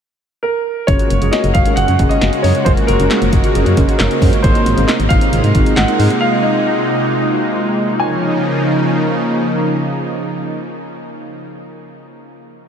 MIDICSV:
0, 0, Header, 1, 7, 480
1, 0, Start_track
1, 0, Key_signature, -5, "major"
1, 0, Tempo, 444444
1, 955, Time_signature, 4, 2, 24, 8
1, 13697, End_track
2, 0, Start_track
2, 0, Title_t, "Grand piano"
2, 0, Program_c, 0, 0
2, 460, Note_on_c, 0, 70, 89
2, 941, Note_on_c, 0, 73, 100
2, 962, Note_off_c, 0, 70, 0
2, 1393, Note_off_c, 0, 73, 0
2, 1420, Note_on_c, 0, 75, 98
2, 1660, Note_on_c, 0, 77, 99
2, 1674, Note_off_c, 0, 75, 0
2, 1899, Note_on_c, 0, 78, 105
2, 1915, Note_off_c, 0, 77, 0
2, 2259, Note_on_c, 0, 75, 104
2, 2278, Note_off_c, 0, 78, 0
2, 2620, Note_on_c, 0, 73, 91
2, 2638, Note_off_c, 0, 75, 0
2, 2859, Note_on_c, 0, 72, 96
2, 2874, Note_off_c, 0, 73, 0
2, 2915, Note_off_c, 0, 72, 0
2, 3101, Note_on_c, 0, 70, 108
2, 4283, Note_off_c, 0, 70, 0
2, 4299, Note_on_c, 0, 70, 88
2, 4780, Note_on_c, 0, 72, 98
2, 4801, Note_off_c, 0, 70, 0
2, 5259, Note_on_c, 0, 75, 97
2, 5282, Note_off_c, 0, 72, 0
2, 5315, Note_off_c, 0, 75, 0
2, 5496, Note_on_c, 0, 77, 112
2, 6219, Note_on_c, 0, 78, 99
2, 6247, Note_off_c, 0, 77, 0
2, 6702, Note_on_c, 0, 77, 101
2, 6721, Note_off_c, 0, 78, 0
2, 6942, Note_on_c, 0, 75, 86
2, 6956, Note_off_c, 0, 77, 0
2, 7865, Note_off_c, 0, 75, 0
2, 8635, Note_on_c, 0, 80, 87
2, 12262, Note_off_c, 0, 80, 0
2, 13697, End_track
3, 0, Start_track
3, 0, Title_t, "Analog polysynth"
3, 0, Program_c, 1, 90
3, 954, Note_on_c, 1, 61, 77
3, 954, Note_on_c, 1, 68, 72
3, 954, Note_on_c, 1, 70, 86
3, 955, Note_on_c, 1, 66, 69
3, 1185, Note_off_c, 1, 61, 0
3, 1185, Note_off_c, 1, 68, 0
3, 1185, Note_off_c, 1, 70, 0
3, 1186, Note_off_c, 1, 66, 0
3, 1313, Note_on_c, 1, 61, 76
3, 1313, Note_on_c, 1, 66, 74
3, 1313, Note_on_c, 1, 68, 74
3, 1313, Note_on_c, 1, 70, 87
3, 1622, Note_off_c, 1, 61, 0
3, 1622, Note_off_c, 1, 66, 0
3, 1622, Note_off_c, 1, 68, 0
3, 1622, Note_off_c, 1, 70, 0
3, 1795, Note_on_c, 1, 61, 77
3, 1795, Note_on_c, 1, 66, 69
3, 1795, Note_on_c, 1, 68, 70
3, 1795, Note_on_c, 1, 70, 84
3, 2026, Note_off_c, 1, 61, 0
3, 2026, Note_off_c, 1, 66, 0
3, 2026, Note_off_c, 1, 68, 0
3, 2026, Note_off_c, 1, 70, 0
3, 2154, Note_on_c, 1, 61, 75
3, 2154, Note_on_c, 1, 66, 72
3, 2155, Note_on_c, 1, 68, 69
3, 2155, Note_on_c, 1, 70, 87
3, 2385, Note_off_c, 1, 61, 0
3, 2385, Note_off_c, 1, 66, 0
3, 2386, Note_off_c, 1, 68, 0
3, 2386, Note_off_c, 1, 70, 0
3, 2515, Note_on_c, 1, 66, 70
3, 2516, Note_on_c, 1, 68, 68
3, 2516, Note_on_c, 1, 70, 82
3, 2517, Note_on_c, 1, 61, 75
3, 2746, Note_off_c, 1, 61, 0
3, 2746, Note_off_c, 1, 66, 0
3, 2746, Note_off_c, 1, 68, 0
3, 2746, Note_off_c, 1, 70, 0
3, 2875, Note_on_c, 1, 68, 70
3, 2875, Note_on_c, 1, 70, 88
3, 2876, Note_on_c, 1, 61, 78
3, 2876, Note_on_c, 1, 66, 69
3, 3105, Note_off_c, 1, 68, 0
3, 3106, Note_off_c, 1, 61, 0
3, 3106, Note_off_c, 1, 66, 0
3, 3106, Note_off_c, 1, 70, 0
3, 3235, Note_on_c, 1, 70, 85
3, 3236, Note_on_c, 1, 61, 78
3, 3236, Note_on_c, 1, 66, 71
3, 3236, Note_on_c, 1, 68, 72
3, 3543, Note_off_c, 1, 61, 0
3, 3543, Note_off_c, 1, 66, 0
3, 3543, Note_off_c, 1, 68, 0
3, 3543, Note_off_c, 1, 70, 0
3, 3716, Note_on_c, 1, 61, 91
3, 3716, Note_on_c, 1, 66, 82
3, 3716, Note_on_c, 1, 68, 85
3, 3716, Note_on_c, 1, 70, 103
3, 3946, Note_off_c, 1, 61, 0
3, 3946, Note_off_c, 1, 66, 0
3, 3946, Note_off_c, 1, 68, 0
3, 3946, Note_off_c, 1, 70, 0
3, 4076, Note_on_c, 1, 61, 94
3, 4076, Note_on_c, 1, 66, 84
3, 4076, Note_on_c, 1, 68, 83
3, 4076, Note_on_c, 1, 70, 99
3, 4306, Note_off_c, 1, 61, 0
3, 4306, Note_off_c, 1, 66, 0
3, 4306, Note_off_c, 1, 68, 0
3, 4306, Note_off_c, 1, 70, 0
3, 4436, Note_on_c, 1, 61, 78
3, 4436, Note_on_c, 1, 66, 72
3, 4436, Note_on_c, 1, 68, 71
3, 4436, Note_on_c, 1, 72, 83
3, 4666, Note_off_c, 1, 61, 0
3, 4666, Note_off_c, 1, 66, 0
3, 4666, Note_off_c, 1, 68, 0
3, 4666, Note_off_c, 1, 72, 0
3, 4795, Note_on_c, 1, 60, 76
3, 4795, Note_on_c, 1, 63, 71
3, 4795, Note_on_c, 1, 68, 72
3, 4795, Note_on_c, 1, 70, 90
3, 5025, Note_off_c, 1, 68, 0
3, 5026, Note_off_c, 1, 60, 0
3, 5026, Note_off_c, 1, 63, 0
3, 5026, Note_off_c, 1, 70, 0
3, 5155, Note_on_c, 1, 68, 71
3, 5155, Note_on_c, 1, 72, 89
3, 5156, Note_on_c, 1, 60, 80
3, 5156, Note_on_c, 1, 63, 72
3, 5463, Note_off_c, 1, 60, 0
3, 5463, Note_off_c, 1, 63, 0
3, 5463, Note_off_c, 1, 68, 0
3, 5463, Note_off_c, 1, 72, 0
3, 5634, Note_on_c, 1, 60, 77
3, 5634, Note_on_c, 1, 68, 68
3, 5635, Note_on_c, 1, 63, 69
3, 5635, Note_on_c, 1, 72, 83
3, 5865, Note_off_c, 1, 60, 0
3, 5865, Note_off_c, 1, 63, 0
3, 5865, Note_off_c, 1, 68, 0
3, 5866, Note_off_c, 1, 72, 0
3, 5993, Note_on_c, 1, 60, 76
3, 5994, Note_on_c, 1, 63, 71
3, 5994, Note_on_c, 1, 68, 70
3, 5994, Note_on_c, 1, 70, 83
3, 6225, Note_off_c, 1, 60, 0
3, 6225, Note_off_c, 1, 63, 0
3, 6225, Note_off_c, 1, 68, 0
3, 6225, Note_off_c, 1, 70, 0
3, 6355, Note_on_c, 1, 60, 75
3, 6355, Note_on_c, 1, 68, 69
3, 6355, Note_on_c, 1, 70, 85
3, 6356, Note_on_c, 1, 63, 73
3, 6586, Note_off_c, 1, 60, 0
3, 6586, Note_off_c, 1, 63, 0
3, 6586, Note_off_c, 1, 68, 0
3, 6586, Note_off_c, 1, 70, 0
3, 13697, End_track
4, 0, Start_track
4, 0, Title_t, "Harp"
4, 0, Program_c, 2, 46
4, 953, Note_on_c, 2, 65, 90
4, 1075, Note_on_c, 2, 66, 76
4, 1140, Note_off_c, 2, 65, 0
4, 1196, Note_on_c, 2, 61, 76
4, 1315, Note_on_c, 2, 63, 70
4, 1432, Note_off_c, 2, 61, 0
4, 1436, Note_on_c, 2, 61, 82
4, 1550, Note_off_c, 2, 63, 0
4, 1554, Note_on_c, 2, 63, 75
4, 1671, Note_off_c, 2, 61, 0
4, 1676, Note_on_c, 2, 61, 74
4, 1792, Note_off_c, 2, 61, 0
4, 1796, Note_on_c, 2, 61, 73
4, 1913, Note_off_c, 2, 63, 0
4, 1917, Note_on_c, 2, 63, 88
4, 2031, Note_off_c, 2, 61, 0
4, 2035, Note_on_c, 2, 61, 75
4, 2156, Note_on_c, 2, 65, 76
4, 2221, Note_off_c, 2, 66, 0
4, 2390, Note_off_c, 2, 63, 0
4, 2395, Note_on_c, 2, 63, 85
4, 2512, Note_off_c, 2, 61, 0
4, 2517, Note_on_c, 2, 61, 74
4, 2752, Note_off_c, 2, 61, 0
4, 2757, Note_on_c, 2, 61, 75
4, 2873, Note_off_c, 2, 65, 0
4, 2877, Note_on_c, 2, 65, 94
4, 2995, Note_on_c, 2, 66, 76
4, 3059, Note_off_c, 2, 65, 0
4, 3112, Note_off_c, 2, 61, 0
4, 3116, Note_on_c, 2, 61, 75
4, 3232, Note_off_c, 2, 63, 0
4, 3236, Note_on_c, 2, 63, 73
4, 3353, Note_off_c, 2, 61, 0
4, 3358, Note_on_c, 2, 61, 80
4, 3472, Note_off_c, 2, 63, 0
4, 3476, Note_on_c, 2, 63, 74
4, 3592, Note_off_c, 2, 61, 0
4, 3597, Note_on_c, 2, 61, 81
4, 3713, Note_off_c, 2, 61, 0
4, 3717, Note_on_c, 2, 61, 75
4, 3832, Note_off_c, 2, 63, 0
4, 3837, Note_on_c, 2, 63, 87
4, 3953, Note_off_c, 2, 61, 0
4, 3957, Note_on_c, 2, 61, 74
4, 4077, Note_on_c, 2, 65, 78
4, 4142, Note_off_c, 2, 66, 0
4, 4312, Note_off_c, 2, 63, 0
4, 4317, Note_on_c, 2, 63, 86
4, 4433, Note_off_c, 2, 61, 0
4, 4438, Note_on_c, 2, 61, 74
4, 4671, Note_off_c, 2, 61, 0
4, 4676, Note_on_c, 2, 61, 77
4, 4791, Note_off_c, 2, 63, 0
4, 4795, Note_on_c, 2, 63, 95
4, 4910, Note_off_c, 2, 65, 0
4, 4915, Note_on_c, 2, 65, 77
4, 5031, Note_off_c, 2, 63, 0
4, 5036, Note_on_c, 2, 63, 78
4, 5153, Note_off_c, 2, 65, 0
4, 5157, Note_on_c, 2, 65, 74
4, 5272, Note_off_c, 2, 63, 0
4, 5276, Note_on_c, 2, 63, 86
4, 5390, Note_off_c, 2, 65, 0
4, 5395, Note_on_c, 2, 65, 77
4, 5512, Note_off_c, 2, 63, 0
4, 5517, Note_on_c, 2, 63, 78
4, 5631, Note_off_c, 2, 63, 0
4, 5635, Note_on_c, 2, 63, 74
4, 5753, Note_off_c, 2, 65, 0
4, 5758, Note_on_c, 2, 65, 85
4, 5874, Note_off_c, 2, 63, 0
4, 5878, Note_on_c, 2, 63, 77
4, 5998, Note_on_c, 2, 66, 81
4, 6063, Note_off_c, 2, 65, 0
4, 6239, Note_on_c, 2, 65, 88
4, 6304, Note_off_c, 2, 66, 0
4, 6357, Note_off_c, 2, 63, 0
4, 6361, Note_on_c, 2, 63, 74
4, 6595, Note_off_c, 2, 63, 0
4, 6599, Note_on_c, 2, 63, 78
4, 6714, Note_off_c, 2, 63, 0
4, 6719, Note_on_c, 2, 63, 96
4, 6836, Note_off_c, 2, 65, 0
4, 6840, Note_on_c, 2, 65, 78
4, 6955, Note_off_c, 2, 63, 0
4, 6960, Note_on_c, 2, 63, 82
4, 7074, Note_off_c, 2, 65, 0
4, 7079, Note_on_c, 2, 65, 73
4, 7195, Note_off_c, 2, 63, 0
4, 7200, Note_on_c, 2, 63, 86
4, 7316, Note_off_c, 2, 65, 0
4, 7320, Note_on_c, 2, 65, 80
4, 7436, Note_off_c, 2, 63, 0
4, 7440, Note_on_c, 2, 63, 81
4, 7556, Note_off_c, 2, 63, 0
4, 7561, Note_on_c, 2, 63, 79
4, 7676, Note_off_c, 2, 65, 0
4, 7681, Note_on_c, 2, 65, 90
4, 7796, Note_off_c, 2, 63, 0
4, 7800, Note_on_c, 2, 63, 76
4, 7805, Note_off_c, 2, 61, 0
4, 7919, Note_on_c, 2, 66, 80
4, 7984, Note_off_c, 2, 65, 0
4, 8160, Note_on_c, 2, 65, 89
4, 8225, Note_off_c, 2, 66, 0
4, 8274, Note_off_c, 2, 63, 0
4, 8279, Note_on_c, 2, 63, 76
4, 8514, Note_off_c, 2, 63, 0
4, 8518, Note_on_c, 2, 63, 76
4, 8638, Note_on_c, 2, 61, 73
4, 8677, Note_off_c, 2, 65, 0
4, 8681, Note_on_c, 2, 65, 72
4, 8724, Note_on_c, 2, 68, 76
4, 8768, Note_on_c, 2, 73, 75
4, 11438, Note_off_c, 2, 63, 0
4, 12264, Note_off_c, 2, 61, 0
4, 12307, Note_off_c, 2, 65, 0
4, 12350, Note_off_c, 2, 68, 0
4, 12394, Note_off_c, 2, 73, 0
4, 13697, End_track
5, 0, Start_track
5, 0, Title_t, "Analog synth pad"
5, 0, Program_c, 3, 89
5, 950, Note_on_c, 3, 49, 82
5, 950, Note_on_c, 3, 58, 78
5, 951, Note_on_c, 3, 56, 78
5, 952, Note_on_c, 3, 66, 92
5, 4754, Note_off_c, 3, 49, 0
5, 4754, Note_off_c, 3, 56, 0
5, 4755, Note_off_c, 3, 66, 0
5, 4793, Note_on_c, 3, 63, 90
5, 4794, Note_on_c, 3, 48, 84
5, 4795, Note_on_c, 3, 56, 78
5, 8589, Note_off_c, 3, 58, 0
5, 8596, Note_off_c, 3, 48, 0
5, 8596, Note_off_c, 3, 56, 0
5, 8596, Note_off_c, 3, 63, 0
5, 8636, Note_on_c, 3, 53, 77
5, 8636, Note_on_c, 3, 58, 78
5, 8637, Note_on_c, 3, 49, 87
5, 8637, Note_on_c, 3, 63, 97
5, 12263, Note_off_c, 3, 53, 0
5, 12263, Note_off_c, 3, 58, 0
5, 12264, Note_off_c, 3, 49, 0
5, 12264, Note_off_c, 3, 63, 0
5, 13697, End_track
6, 0, Start_track
6, 0, Title_t, "FM bass"
6, 0, Program_c, 4, 39
6, 953, Note_on_c, 4, 30, 111
6, 1042, Note_off_c, 4, 30, 0
6, 1195, Note_on_c, 4, 30, 104
6, 1283, Note_off_c, 4, 30, 0
6, 1313, Note_on_c, 4, 30, 100
6, 1402, Note_off_c, 4, 30, 0
6, 1552, Note_on_c, 4, 30, 97
6, 1641, Note_off_c, 4, 30, 0
6, 1673, Note_on_c, 4, 30, 99
6, 1762, Note_off_c, 4, 30, 0
6, 1916, Note_on_c, 4, 30, 102
6, 2004, Note_off_c, 4, 30, 0
6, 2034, Note_on_c, 4, 42, 87
6, 2122, Note_off_c, 4, 42, 0
6, 2155, Note_on_c, 4, 30, 94
6, 2243, Note_off_c, 4, 30, 0
6, 2394, Note_on_c, 4, 30, 100
6, 2483, Note_off_c, 4, 30, 0
6, 2634, Note_on_c, 4, 42, 102
6, 2722, Note_off_c, 4, 42, 0
6, 2875, Note_on_c, 4, 30, 107
6, 2963, Note_off_c, 4, 30, 0
6, 3115, Note_on_c, 4, 30, 102
6, 3203, Note_off_c, 4, 30, 0
6, 3234, Note_on_c, 4, 30, 106
6, 3322, Note_off_c, 4, 30, 0
6, 3475, Note_on_c, 4, 30, 93
6, 3563, Note_off_c, 4, 30, 0
6, 3594, Note_on_c, 4, 30, 99
6, 3682, Note_off_c, 4, 30, 0
6, 3835, Note_on_c, 4, 30, 103
6, 3923, Note_off_c, 4, 30, 0
6, 3955, Note_on_c, 4, 42, 97
6, 4043, Note_off_c, 4, 42, 0
6, 4076, Note_on_c, 4, 30, 100
6, 4164, Note_off_c, 4, 30, 0
6, 4314, Note_on_c, 4, 30, 107
6, 4403, Note_off_c, 4, 30, 0
6, 4555, Note_on_c, 4, 42, 95
6, 4643, Note_off_c, 4, 42, 0
6, 4795, Note_on_c, 4, 32, 107
6, 4883, Note_off_c, 4, 32, 0
6, 5034, Note_on_c, 4, 32, 100
6, 5123, Note_off_c, 4, 32, 0
6, 5152, Note_on_c, 4, 32, 104
6, 5241, Note_off_c, 4, 32, 0
6, 5394, Note_on_c, 4, 32, 94
6, 5482, Note_off_c, 4, 32, 0
6, 5514, Note_on_c, 4, 32, 98
6, 5602, Note_off_c, 4, 32, 0
6, 5753, Note_on_c, 4, 32, 108
6, 5842, Note_off_c, 4, 32, 0
6, 5873, Note_on_c, 4, 44, 99
6, 5961, Note_off_c, 4, 44, 0
6, 5995, Note_on_c, 4, 32, 102
6, 6083, Note_off_c, 4, 32, 0
6, 6231, Note_on_c, 4, 32, 99
6, 6320, Note_off_c, 4, 32, 0
6, 6472, Note_on_c, 4, 44, 105
6, 6561, Note_off_c, 4, 44, 0
6, 13697, End_track
7, 0, Start_track
7, 0, Title_t, "Drums"
7, 952, Note_on_c, 9, 42, 74
7, 953, Note_on_c, 9, 36, 115
7, 1060, Note_off_c, 9, 42, 0
7, 1061, Note_off_c, 9, 36, 0
7, 1073, Note_on_c, 9, 42, 50
7, 1181, Note_off_c, 9, 42, 0
7, 1193, Note_on_c, 9, 42, 78
7, 1301, Note_off_c, 9, 42, 0
7, 1314, Note_on_c, 9, 42, 58
7, 1422, Note_off_c, 9, 42, 0
7, 1433, Note_on_c, 9, 38, 106
7, 1433, Note_on_c, 9, 42, 79
7, 1541, Note_off_c, 9, 38, 0
7, 1541, Note_off_c, 9, 42, 0
7, 1553, Note_on_c, 9, 42, 56
7, 1661, Note_off_c, 9, 42, 0
7, 1670, Note_on_c, 9, 42, 77
7, 1672, Note_on_c, 9, 36, 99
7, 1778, Note_off_c, 9, 42, 0
7, 1780, Note_off_c, 9, 36, 0
7, 1788, Note_on_c, 9, 42, 56
7, 1896, Note_off_c, 9, 42, 0
7, 1911, Note_on_c, 9, 42, 81
7, 2019, Note_off_c, 9, 42, 0
7, 2031, Note_on_c, 9, 42, 48
7, 2139, Note_off_c, 9, 42, 0
7, 2150, Note_on_c, 9, 42, 73
7, 2154, Note_on_c, 9, 36, 87
7, 2258, Note_off_c, 9, 42, 0
7, 2262, Note_off_c, 9, 36, 0
7, 2276, Note_on_c, 9, 42, 50
7, 2384, Note_off_c, 9, 42, 0
7, 2391, Note_on_c, 9, 38, 117
7, 2394, Note_on_c, 9, 42, 75
7, 2499, Note_off_c, 9, 38, 0
7, 2502, Note_off_c, 9, 42, 0
7, 2514, Note_on_c, 9, 42, 53
7, 2622, Note_off_c, 9, 42, 0
7, 2636, Note_on_c, 9, 46, 76
7, 2744, Note_off_c, 9, 46, 0
7, 2752, Note_on_c, 9, 42, 50
7, 2860, Note_off_c, 9, 42, 0
7, 2874, Note_on_c, 9, 42, 79
7, 2875, Note_on_c, 9, 36, 115
7, 2982, Note_off_c, 9, 42, 0
7, 2983, Note_off_c, 9, 36, 0
7, 2995, Note_on_c, 9, 42, 51
7, 3103, Note_off_c, 9, 42, 0
7, 3115, Note_on_c, 9, 42, 79
7, 3223, Note_off_c, 9, 42, 0
7, 3236, Note_on_c, 9, 42, 62
7, 3344, Note_off_c, 9, 42, 0
7, 3355, Note_on_c, 9, 38, 108
7, 3355, Note_on_c, 9, 39, 88
7, 3355, Note_on_c, 9, 42, 77
7, 3463, Note_off_c, 9, 38, 0
7, 3463, Note_off_c, 9, 39, 0
7, 3463, Note_off_c, 9, 42, 0
7, 3475, Note_on_c, 9, 42, 57
7, 3583, Note_off_c, 9, 42, 0
7, 3593, Note_on_c, 9, 42, 79
7, 3594, Note_on_c, 9, 36, 100
7, 3701, Note_off_c, 9, 42, 0
7, 3702, Note_off_c, 9, 36, 0
7, 3713, Note_on_c, 9, 42, 56
7, 3821, Note_off_c, 9, 42, 0
7, 3837, Note_on_c, 9, 42, 80
7, 3945, Note_off_c, 9, 42, 0
7, 3955, Note_on_c, 9, 42, 50
7, 4063, Note_off_c, 9, 42, 0
7, 4074, Note_on_c, 9, 42, 77
7, 4076, Note_on_c, 9, 36, 88
7, 4182, Note_off_c, 9, 42, 0
7, 4184, Note_off_c, 9, 36, 0
7, 4198, Note_on_c, 9, 42, 51
7, 4306, Note_off_c, 9, 42, 0
7, 4314, Note_on_c, 9, 38, 121
7, 4314, Note_on_c, 9, 39, 100
7, 4317, Note_on_c, 9, 42, 78
7, 4422, Note_off_c, 9, 38, 0
7, 4422, Note_off_c, 9, 39, 0
7, 4425, Note_off_c, 9, 42, 0
7, 4437, Note_on_c, 9, 42, 53
7, 4545, Note_off_c, 9, 42, 0
7, 4555, Note_on_c, 9, 36, 93
7, 4560, Note_on_c, 9, 46, 74
7, 4663, Note_off_c, 9, 36, 0
7, 4668, Note_off_c, 9, 46, 0
7, 4675, Note_on_c, 9, 42, 52
7, 4783, Note_off_c, 9, 42, 0
7, 4795, Note_on_c, 9, 36, 118
7, 4796, Note_on_c, 9, 42, 77
7, 4903, Note_off_c, 9, 36, 0
7, 4904, Note_off_c, 9, 42, 0
7, 4917, Note_on_c, 9, 42, 52
7, 5025, Note_off_c, 9, 42, 0
7, 5036, Note_on_c, 9, 42, 81
7, 5144, Note_off_c, 9, 42, 0
7, 5157, Note_on_c, 9, 42, 62
7, 5265, Note_off_c, 9, 42, 0
7, 5275, Note_on_c, 9, 38, 111
7, 5275, Note_on_c, 9, 39, 86
7, 5275, Note_on_c, 9, 42, 79
7, 5383, Note_off_c, 9, 38, 0
7, 5383, Note_off_c, 9, 39, 0
7, 5383, Note_off_c, 9, 42, 0
7, 5396, Note_on_c, 9, 42, 55
7, 5504, Note_off_c, 9, 42, 0
7, 5512, Note_on_c, 9, 42, 79
7, 5514, Note_on_c, 9, 36, 99
7, 5620, Note_off_c, 9, 42, 0
7, 5622, Note_off_c, 9, 36, 0
7, 5631, Note_on_c, 9, 42, 56
7, 5739, Note_off_c, 9, 42, 0
7, 5756, Note_on_c, 9, 42, 83
7, 5864, Note_off_c, 9, 42, 0
7, 5874, Note_on_c, 9, 42, 50
7, 5982, Note_off_c, 9, 42, 0
7, 5991, Note_on_c, 9, 42, 76
7, 5995, Note_on_c, 9, 36, 89
7, 6099, Note_off_c, 9, 42, 0
7, 6103, Note_off_c, 9, 36, 0
7, 6117, Note_on_c, 9, 42, 51
7, 6225, Note_off_c, 9, 42, 0
7, 6232, Note_on_c, 9, 38, 119
7, 6232, Note_on_c, 9, 39, 104
7, 6235, Note_on_c, 9, 42, 76
7, 6340, Note_off_c, 9, 38, 0
7, 6340, Note_off_c, 9, 39, 0
7, 6343, Note_off_c, 9, 42, 0
7, 6354, Note_on_c, 9, 42, 51
7, 6462, Note_off_c, 9, 42, 0
7, 6476, Note_on_c, 9, 46, 74
7, 6584, Note_off_c, 9, 46, 0
7, 6593, Note_on_c, 9, 42, 51
7, 6701, Note_off_c, 9, 42, 0
7, 13697, End_track
0, 0, End_of_file